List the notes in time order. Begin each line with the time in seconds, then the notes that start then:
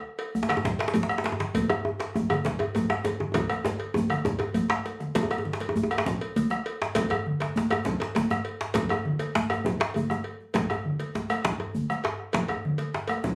0.19 bombo rim, cowbell
0.35 bombo rim, djembe bass
0.43 djembe slap
0.49 bombo rim, cowbell, djembe slap, djembe tone, high conga
0.57 djembe tone
0.65 bombo low, djembe slap
0.79 bombo rim, cowbell, djembe slap, high conga
0.88 djembe slap
0.94 cowbell, djembe tone, djembe bass, low conga
1.03 djembe slap
1.09 bombo rim, djembe slap, djembe tone
1.18 djembe slap
1.24 cowbell, djembe slap, high conga
1.32 djembe tone
1.40 djembe slap, high conga
1.54 bombo low, cowbell, low conga, djembe bass
1.70 bombo rim, cowbell, djembe tone
1.85 djembe tone
2.00 bombo rim, cowbell, djembe slap
2.14 bombo rim, djembe tone, low conga, djembe bass
2.30 bombo rim, cowbell, high conga, djembe tone
2.45 bombo low, djembe slap
2.59 bombo rim, cowbell, djembe tone, high conga
2.75 cowbell, djembe tone, low conga, djembe bass
2.90 bombo rim, djembe slap, djembe tone
3.04 cowbell, djembe slap, djembe tone, high conga
3.20 djembe tone, high conga
3.34 bombo rim, bombo low, cowbell, djembe slap, djembe tone, low conga, djembe bass
3.49 bombo rim, cowbell, djembe tone
3.65 djembe slap, djembe tone
3.80 cowbell, high conga
3.94 djembe tone, high conga, low conga, djembe bass
4.10 bombo rim, cowbell, high conga, djembe tone
4.25 bombo low, djembe slap, djembe tone
4.39 bombo rim, cowbell, djembe tone
4.54 bombo rim, cowbell, djembe bass, low conga
4.70 bombo rim, djembe slap, djembe bass
4.85 bombo rim, cowbell, djembe slap
5.00 bombo rim, djembe slap, high conga
5.15 bombo low, cowbell, djembe slap, djembe bass, low conga
5.23 djembe tone
5.30 bombo rim, cowbell, djembe tone
5.38 djembe tone
5.45 high conga
5.53 djembe slap
5.60 cowbell, djembe slap
5.69 djembe tone
5.76 djembe tone, djembe bass
5.83 djembe tone
5.91 bombo rim, cowbell, djembe tone
5.98 djembe slap
6.06 bombo low, djembe slap, low conga
6.21 cowbell, djembe slap
6.36 cowbell, high conga, djembe bass
6.50 bombo rim, djembe slap, djembe tone, high conga
6.66 cowbell
6.81 djembe slap
6.95 bombo low, cowbell, djembe slap, djembe bass, low conga
7.10 bombo rim, cowbell, djembe tone
7.26 high conga
7.40 cowbell, djembe slap
7.56 djembe slap, djembe bass
7.70 bombo rim, cowbell, djembe tone
7.72 djembe tone
7.85 bombo low, djembe slap, low conga
8.00 cowbell, djembe slap
8.15 cowbell, djembe slap, high conga, djembe bass
8.30 bombo rim, djembe slap, djembe tone
8.45 cowbell
8.61 djembe slap
8.74 bombo low, cowbell, djembe slap, low conga, djembe bass
8.89 bombo rim, cowbell, djembe tone
9.05 high conga
9.19 cowbell, djembe slap
9.35 djembe slap, djembe bass
9.50 bombo rim, cowbell, djembe tone
9.65 bombo low, djembe slap, djembe tone, low conga
9.80 cowbell, djembe slap
9.94 cowbell, high conga, djembe tone, djembe bass
10.10 bombo rim, djembe slap, high conga, djembe tone
10.24 cowbell
10.40 djembe slap
10.54 bombo rim, bombo low, cowbell, djembe slap, djembe bass, low conga
10.70 bombo rim, cowbell, djembe tone
10.85 high conga
11.00 cowbell, djembe slap, high conga
11.15 djembe slap, djembe bass
11.30 bombo rim, cowbell, djembe tone, high conga
11.44 bombo low, djembe slap, low conga
11.60 cowbell, djembe tone
11.75 high conga, djembe bass
11.90 bombo rim, djembe slap, djembe tone
12.04 cowbell, djembe slap
12.20 bombo rim
12.33 bombo low, cowbell, djembe slap, djembe bass, low conga
12.48 bombo rim, cowbell, djembe tone
12.65 high conga
12.78 cowbell, djembe slap
12.94 djembe slap
13.08 bombo rim, cowbell, djembe tone
13.24 bombo low, djembe slap, low conga